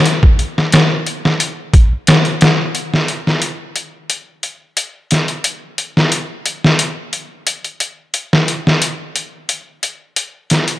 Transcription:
\new DrumStaff \with { instrumentName = "Drums" } \drummode { \time 4/4 \tempo 4 = 89 hh16 bd16 hh16 sn16 <hh sn>8 hh16 sn16 hh8 <hh bd>8 <hh sn>16 hh16 <hh sn>8 | hh16 sn16 hh16 sn16 hh8 hh8 hh8 hh8 hh8 <hh sn>16 hh16 | hh8 hh16 sn16 hh8 hh16 sn16 hh8 hh8 hh16 hh16 hh8 | hh16 sn16 hh16 sn16 hh8 hh8 hh8 hh8 hh8 <hh sn>16 hh16 | }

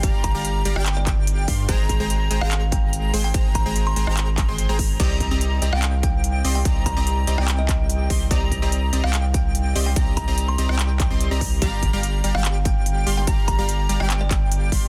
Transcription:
<<
  \new Staff \with { instrumentName = "Digital synth lead" } { \time 4/4 \key c \minor \tempo 4 = 145 bes''8. bes''8. bes''16 g''4.~ g''16 c'''16 r16 | bes''8. bes''8. bes''16 bes''4.~ bes''16 c'''16 r16 | bes''8. bes''8. bes''16 bes''4 c'''8 bes''8. | bes''8. bes''8. bes''16 g''4.~ g''16 c'''16 r16 |
bes''8. bes''8. bes''16 g''4.~ g''16 c'''16 r16 | bes''8. bes''8. bes''16 g''4.~ g''16 c'''16 r16 | bes''8. bes''8. bes''16 g''4 c'''8 bes''8. | bes''8. bes''8. bes''16 g''4.~ g''16 c'''16 r16 |
bes''8. bes''8. bes''16 g''4.~ g''16 c'''16 r16 | }
  \new Staff \with { instrumentName = "Kalimba" } { \time 4/4 \key c \minor r8 bes''16 r4 g''16 g''16 d''4. r16 | r4. r16 f''16 r8 g''16 r4 g''16 | r8 bes''16 r8 c'''4 r4. r16 | r4. r16 f''16 r8 g''16 r4 g''16 |
r8 bes''16 r4 g''16 g''16 ees''4. r16 | r4. r16 f''16 r8 g''16 r4 g''16 | r8 bes''16 r8 c'''4 r4. r16 | r4. r16 f''16 r8 g''16 r4 g''16 |
r8 bes''16 r4 g''16 g''16 d''4. r16 | }
  \new Staff \with { instrumentName = "Supersaw synth" } { \time 4/4 \key c \minor <g g' d'' f'' bes''>8. <g g' d'' f'' bes''>8. <g g' d'' f'' bes''>16 <g g' d'' f'' g''>4.~ <g g' d'' f'' g''>16 <g g' d'' f'' c'''>16 r16 | <aes aes' c'' g'' bes''>8. <aes aes' c'' g'' bes''>8. <aes aes' c'' g'' bes''>16 <aes aes' c'' g'' bes''>4.~ <aes aes' c'' g'' bes''>16 <aes aes' c'' g'' c'''>16 r16 | <aes aes' c'' g'' bes''>8. <aes aes' c'' g'' bes''>8. <aes aes' c'' g'' bes''>16 <aes aes' c'' g'' bes''>4 <aes aes' c'' g'' c'''>8 <aes aes' c'' g'' bes''>8. | <c' g' d'' ees'' bes''>8. <c' g' d'' ees'' bes''>8. <c' g' d'' ees'' bes''>16 <c' g' d'' ees'' g''>4.~ <c' g' d'' ees'' g''>16 <c' g' d'' ees'' c'''>16 r16 |
<c' g' d'' ees'' bes''>8. <c' g' d'' ees'' bes''>8. <c' g' d'' ees'' bes''>16 <c' g' d'' ees'' g''>4.~ <c' g' d'' ees'' g''>16 <c' g' d'' ees'' c'''>16 r16 | <c' g' d'' ees'' bes''>8. <c' g' d'' ees'' bes''>8. <c' g' d'' ees'' bes''>16 <c' g' d'' ees'' g''>4.~ <c' g' d'' ees'' g''>16 <c' g' d'' ees'' c'''>16 r16 | <c' g' d'' ees'' bes''>8. <c' g' d'' ees'' bes''>8. <c' g' d'' ees'' bes''>16 <c' g' d'' ees'' g''>4 <c' g' d'' ees'' c'''>8 <c' g' d'' ees'' bes''>8. | <g g' d'' f'' bes''>8. <g g' d'' f'' bes''>8. <g g' d'' f'' bes''>16 <g g' d'' f'' g''>4.~ <g g' d'' f'' g''>16 <g g' d'' f'' c'''>16 r16 |
<g g' d'' f'' bes''>8. <g g' d'' f'' bes''>8. <g g' d'' f'' bes''>16 <g g' d'' f'' g''>4.~ <g g' d'' f'' g''>16 <g g' d'' f'' c'''>16 r16 | }
  \new Staff \with { instrumentName = "Sub bass" } { \clef bass \time 4/4 \key c \minor g,,8. g,,8. g,,16 g,,4.~ g,,16 g,8 | aes,,8. aes,,8. aes,,16 aes,,4.~ aes,,16 aes,,8 | aes,,8. aes,,8. aes,,16 aes,,4 aes,,8 aes,,8. | c,8. c,8. c,16 c,4.~ c,16 c,8 |
c,8. c,8. c,16 c,4.~ c,16 c,8 | c,8. c,8. c,16 c,4.~ c,16 c,8 | c,8. c,8. c,16 c,4 c,8 c,8. | g,,8. g,,8. g,,16 g,,4.~ g,,16 g,,8 |
g,,8. g,,8. g,,16 g,,4.~ g,,16 g,,8 | }
  \new DrumStaff \with { instrumentName = "Drums" } \drummode { \time 4/4 <hh bd>8 <hh bd>8 hh8 hh16 ss16 <hc hh>8 <hc hh bd>8 hh8 <hho bd>8 | <hh bd>8 <hh bd>8 hh8 hh16 ss16 <hc hh>8 <hh bd>8 hh8 hho8 | <hh bd>8 <hh bd>8 hh8 hh16 ss16 <hc hh>8 <hc hh bd>8 hh8 <hho bd>8 | <cymc hh bd>8 <hh bd>8 hh8 hh16 ss16 <hc hh>8 <hh bd>8 hh8 hho8 |
<hh bd>8 <hh bd>8 hh8 hh16 ss16 <hc hh>8 <hc hh bd>8 hh8 <hho bd>8 | <hh bd>8 <hh bd>8 hh8 hh16 ss16 <hc hh>8 <hh bd>8 hh8 hho8 | <hh bd>8 <hh bd>8 hh8 hh16 ss16 <hc hh>8 <hc hh bd>8 hh8 <hho bd>8 | <hh bd>8 <hh bd>8 hh8 hh16 ss16 <hc hh>8 <hh bd>8 hh8 hho8 |
<hh bd>8 <hh bd>8 hh8 hh16 ss16 <hc hh>8 <hc hh bd>8 hh8 <hho bd>8 | }
>>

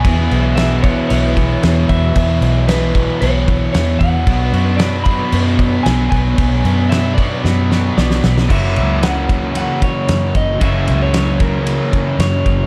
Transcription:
<<
  \new Staff \with { instrumentName = "Clean electric guitar" } { \time 4/4 \key fis \mixolydian \tempo 4 = 114 gis''4 e''8 cis''8 cis''4. e''8~ | e''8 r8 b'4 cis''4 cis''8 fis''8~ | fis''4 d''8 b''4. gis''8 gis''8~ | gis''4 e''8 d''4. d''4 |
e''4 fis''4 fis''8 cis''4 dis''8 | e''8. cis''16 cis''8 ais'4 r8 cis''4 | }
  \new Staff \with { instrumentName = "Overdriven electric guitar" } { \time 4/4 \key fis \mixolydian <e, b, e b e' gis'>1~ | <e, b, e b e' gis'>1 | <b, fis b d' fis'>1~ | <b, fis b d' fis'>1 |
<fis, cis e ais cis' fis'>1 | <fis, cis e ais cis' fis'>1 | }
  \new Staff \with { instrumentName = "Distorted electric guitar" } { \clef bass \time 4/4 \key fis \mixolydian <e, b, e>4 <e, b, e>8 <b, e>4 <b, e>8 <e, b, e>4 | <e, b, e>4 <e, b, e>8 <b, e>4 <b, e>8 <e, b, e>4 | <b, fis b>4 <b, fis b>8 <fis b>4 <fis b>8 <b, fis b>4 | <b, fis b>4 <b, fis b>8 <fis b>4 <fis b>8 <b, fis b>4 |
<fis, cis fis>4 <fis, cis fis>4 <fis, cis fis>8 <cis fis>4 <cis fis>8 | <fis, cis fis>4 <fis, cis fis>4 <fis, cis fis>8 <cis fis>4 <cis fis>8 | }
  \new Staff \with { instrumentName = "Distorted electric guitar" } { \clef bass \time 4/4 \key fis \mixolydian <e, b, e>8 <e, b, e>8 <e, b, e>8 <e, b, e>8 <e, b, e>8 <e, b, e>8 <e, b, e>8 <e, b, e>8 | <e, b, e>8 <e, b, e>8 <e, b, e>8 <e, b, e>8 <e, b, e>8 <e, b, e>8 <e, b, e>8 <e, b, e>8 | <b, fis b>8 <b, fis b>8 <b, fis b>8 <b, fis b>8 <b, fis b>8 <b, fis b>8 <b, fis b>8 <b, fis b>8 | <b, fis b>8 <b, fis b>8 <b, fis b>8 <b, fis b>8 <b, fis b>8 <b, fis b>8 <b, fis b>8 <b, fis b>8 |
<fis, cis fis>1 | <fis, cis fis>1 | }
  \new Staff \with { instrumentName = "Fingered electric bass" } { \clef bass \time 4/4 \key fis \mixolydian e,8 b,,4. b,,4 e,8 e,8 | e,8 b,,4. b,,4 e,8 e,8 | b,,8 fis,4. fis,4 b,,8 b,,8 | b,,8 fis,4. fis,4 b,,8 b,,8 |
fis,,8 cis,2 r8 fis,8 fis,,8 | fis,,8 cis,2 r8 fis,8 fis,,8 | }
  \new DrumStaff \with { instrumentName = "Drums" } \drummode { \time 4/4 <cymc bd>8 cymc8 <cymc sn>8 <cymc bd>8 cymc8 <cymc bd>8 <cymc sn>8 <cymc bd>8 | <cymc bd>8 cymc8 <cymc sn>8 <cymc bd>8 cymc8 <cymc bd>8 <cymc sn>8 <cymc bd>8 | <cymc bd>8 cymc8 <cymc sn>8 <cymc bd>8 cymc8 <cymc bd>8 <cymc sn>8 <cymc bd>8 | <cymc bd>8 cymc8 <cymc sn>8 <cymc bd>8 sn8 sn8 sn16 sn16 sn16 sn16 |
<cymc bd>8 cymr8 <cymr sn>8 <bd cymr>8 cymr8 <bd cymr>8 <cymr sn>8 <bd cymr>8 | <bd cymr>8 cymr8 <cymr sn>8 <bd cymr>8 cymr8 <bd cymr>8 <cymr sn>8 <bd cymr>8 | }
>>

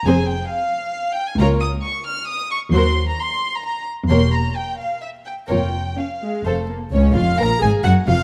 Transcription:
<<
  \new Staff \with { instrumentName = "Violin section" } { \time 3/4 \key f \minor \tempo 4 = 132 aes''8 g''8 f''4. g''16 aes''16 | \key bes \minor bes''8 ees'''8 des'''8 f'''8 ees'''8 des'''8 | c'''8. bes''16 c'''8. bes''16 bes''8 r8 | c'''8 bes''8 g''8 f''8 e''8 g''8 |
g''4 f''4 r4 | des'8 f'8 bes'8 aes'8 ges'8 f'8 | }
  \new Staff \with { instrumentName = "Violin section" } { \time 3/4 \key f \minor <aes' c''>8 r2 r8 | \key bes \minor <bes' des''>8 r2 r8 | <bes' c''>8 r2 r8 | <bes' cis''>8 r2 r8 |
<bes' des''>8 r4. <a' c''>8 r8 | des''8 f''8 bes''8 aes''8 ges''8 f''8 | }
  \new Staff \with { instrumentName = "Viola section" } { \time 3/4 \key f \minor <c' aes'>8 r2 r8 | \key bes \minor <bes f'>8 r2 r8 | <ges ges'>8 r2 r8 | <bes g'>8 r2 r8 |
<bes f'>8 r8 des'8 aes8 a8 bes8 | des'8 f'8 bes'8 aes'8 ges'8 f'8 | }
  \new Staff \with { instrumentName = "Cello section" } { \clef bass \time 3/4 \key f \minor f,4 r2 | \key bes \minor des,4 r2 | ees,4 r2 | e,4 r2 |
f,4 r4 f,4 | des,8 f,8 bes,8 aes,8 ges,8 f,8 | }
  \new Staff \with { instrumentName = "Double bass section" } { \clef bass \time 3/4 \key f \minor f,,4 r2 | \key bes \minor des,4 r2 | ees,4 r2 | e,,4 r2 |
f,,4 r4 f,,4 | des,8 f,,8 bes,,8 aes,,8 ges,,8 f,,8 | }
>>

